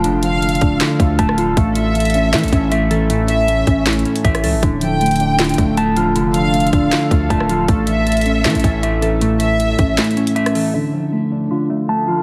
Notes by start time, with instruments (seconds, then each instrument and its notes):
Already playing: synth keys D3 F3 A3 D4 F4, clean electric guitar A3 F4 A5, ambient pad D4 F4 A4 F5
0.04 808-style bass F1, synth keys D3, clean electric guitar D3, closed hi-hat
0.23 synth keys F3, violin section F5, closed hi-hat
0.42 synth keys A3, closed hi-hat
0.49 closed hi-hat
0.55 closed hi-hat
0.61 808-style bass D1, synth keys D4, kick, closed hi-hat
0.80 clean electric guitar D3, synth keys F4, snare, clap, closed hi-hat
1.00 808-style bass D2, clean electric guitar A3, synth keys D4, kick, closed hi-hat
1.19 808-style bass D1, synth keys A3, clean electric guitar A5, kick, closed hi-hat
1.29 cross-stick
1.38 synth keys F3, clean electric guitar F4, closed hi-hat
1.57 808-style bass A1, synth keys A2, clean electric guitar A3, ambient pad C#4 E4 E5, kick, closed hi-hat
1.75 synth keys E3, violin section E5, closed hi-hat
1.95 synth keys A3, closed hi-hat
2.00 closed hi-hat
2.05 closed hi-hat
2.10 closed hi-hat
2.14 synth keys C#4, closed hi-hat
2.33 808-style bass E3, clean electric guitar A3, synth keys E4, snare, clap, closed hi-hat
2.38 closed hi-hat
2.43 808-style bass A1, closed hi-hat
2.48 closed hi-hat
2.52 808-style bass A1, clean electric guitar C#4, synth keys C#4, kick, closed hi-hat
2.72 synth keys A3, clean electric guitar E5, closed hi-hat
2.91 synth keys E3, clean electric guitar A4, closed hi-hat
3.10 synth keys A2, clean electric guitar A3, closed hi-hat
3.28 synth keys E3, violin section E5, closed hi-hat
3.48 synth keys A3, closed hi-hat
3.67 808-style bass A1, synth keys C#4, kick, closed hi-hat
3.86 clean electric guitar A3, synth keys E4, snare, clap, closed hi-hat
3.93 closed hi-hat
3.99 closed hi-hat
4.05 synth keys C#4, clean electric guitar C#4, closed hi-hat
4.16 closed hi-hat
4.24 808-style bass A1, synth keys A3, clean electric guitar E5, kick, closed hi-hat
4.35 cross-stick, closed hi-hat
4.43 808-style bass C#2, synth keys E3, clean electric guitar A4, open hi-hat
4.54 808-style bass A1
4.63 808-style bass D1, clean electric guitar D3, synth keys D3, ambient pad D4 F4 A4 F5, kick, closed hi-hat
4.81 synth keys F3, violin section G5, closed hi-hat
5.01 synth keys A3, closed hi-hat
5.06 closed hi-hat
5.11 closed hi-hat
5.16 closed hi-hat
5.20 synth keys D4, closed hi-hat
5.39 clean electric guitar D3, synth keys F4, snare, clap, closed hi-hat
5.44 closed hi-hat
5.49 closed hi-hat
5.54 closed hi-hat
5.58 808-style bass D1, clean electric guitar A3, synth keys D4, kick, closed hi-hat
5.77 synth keys A3, clean electric guitar A5, closed hi-hat
5.96 synth keys F3, clean electric guitar F4, closed hi-hat
6.16 808-style bass F1, synth keys D3, clean electric guitar D3, closed hi-hat
6.34 synth keys F3, violin section F5, closed hi-hat
6.54 synth keys A3, closed hi-hat
6.60 closed hi-hat
6.67 closed hi-hat
6.73 808-style bass D1, synth keys D4, kick, closed hi-hat
6.92 clean electric guitar D3, synth keys F4, snare, clap, closed hi-hat
7.11 808-style bass D2, clean electric guitar A3, synth keys D4, kick, closed hi-hat
7.30 808-style bass D1, synth keys A3, clean electric guitar A5, kick, closed hi-hat
7.40 cross-stick
7.49 synth keys F3, clean electric guitar F4, closed hi-hat
7.68 808-style bass A1, synth keys A2, clean electric guitar A3, ambient pad C#4 E4 E5, kick, closed hi-hat
7.87 synth keys E3, violin section E5, closed hi-hat
8.07 synth keys A3, closed hi-hat
8.12 closed hi-hat
8.17 closed hi-hat
8.21 closed hi-hat
8.26 synth keys C#4, closed hi-hat
8.45 808-style bass E3, clean electric guitar A3, synth keys E4, snare, clap, closed hi-hat
8.50 closed hi-hat
8.55 808-style bass A1, closed hi-hat
8.60 closed hi-hat
8.64 808-style bass A1, clean electric guitar C#4, synth keys C#4, kick, closed hi-hat
8.83 synth keys A3, clean electric guitar E5, closed hi-hat
9.02 synth keys E3, clean electric guitar A4, closed hi-hat
9.21 synth keys A2, clean electric guitar A3, closed hi-hat
9.40 synth keys E3, violin section E5, closed hi-hat
9.60 synth keys A3, closed hi-hat
9.79 808-style bass A1, synth keys C#4, kick, closed hi-hat
9.98 clean electric guitar A3, synth keys E4, snare, clap, closed hi-hat
10.04 closed hi-hat
10.11 closed hi-hat
10.17 clean electric guitar C#4, synth keys C#4, closed hi-hat
10.27 closed hi-hat
10.36 synth keys A3, clean electric guitar E5, closed hi-hat
10.46 cross-stick, closed hi-hat
10.55 synth keys E3, clean electric guitar A4, open hi-hat
10.74 clean electric guitar D3, synth keys D3, ambient pad D4 F4 A4 F5
10.93 synth keys F3
11.12 synth keys A3
11.32 synth keys D4
11.51 clean electric guitar D3, synth keys F4
11.70 clean electric guitar A3, synth keys D4
11.89 synth keys A3, clean electric guitar A5
12.08 synth keys F3, clean electric guitar F4